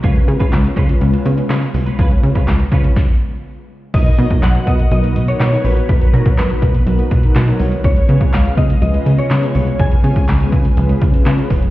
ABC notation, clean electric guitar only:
X:1
M:4/4
L:1/16
Q:1/4=123
K:B
V:1 name="Clean electric guitar"
[C^EB]2 z [CEB] z2 [CEB]2 z4 [CEB]2 z [CEB] | [C^EB]2 z [CEB] z2 [CEB]2 z8 | z16 | z16 |
z16 | z16 |]